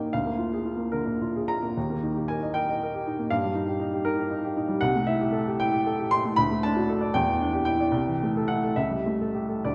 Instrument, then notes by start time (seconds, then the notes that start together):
upright piano
Already playing: D#2 D#4 G4 A#4 D#5 G5 G#5 A#5
0.00 A#3
0.13 D2 F5
0.26 A#3
0.38 F4
0.53 G#4
0.65 F4
0.77 A#3
0.92 D3 A#4
1.06 A#3
1.22 F4
1.36 G#4
1.48 F4 A#5
1.63 A#3
1.77 D#2
1.90 A#3
2.02 D#4
2.16 G4
2.28 A#4 G#5
2.42 D#5
2.54 A#4 G5
2.69 D#5
2.83 A#4
2.95 G4
3.07 D#4
3.19 A#3
3.30 G2 F5
3.44 G3
3.55 D#4
3.68 G4
3.80 D#4
3.94 G4
4.05 D#4 A#4
4.19 G4
4.30 D#4
4.44 G4
4.57 D#4
4.68 G3
4.81 C2 F#5
4.96 A3
5.07 E4 E5
5.20 G4
5.32 A4
5.47 G4
5.60 E4 G5
5.73 G4
5.86 A4
5.99 G4
6.11 E4 C6
6.25 A3
6.36 D2 B5
6.51 A3
6.63 D4 A5
6.77 F#4
6.89 A4
7.01 D5
7.14 E2 G5
7.28 E3
7.40 D4
7.53 G4
7.65 E4 G5
7.80 D5
7.92 C2
8.07 E3
8.23 A3
8.37 A4
8.48 E4 F#5
8.63 A4
8.76 C#2 E5
8.90 G3
9.06 A3
9.21 A4
9.35 G4
9.49 A4
9.65 D2 D5